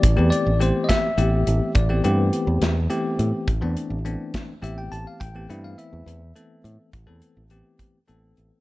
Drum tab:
HH |xxxxxx|xxxxxx|xxxxxx|xxxxxx|
SD |---o--|---o--|---o--|------|
BD |o--o--|o-----|o--o--|o-----|

HH |xxxxxx|
SD |------|
BD |o--o--|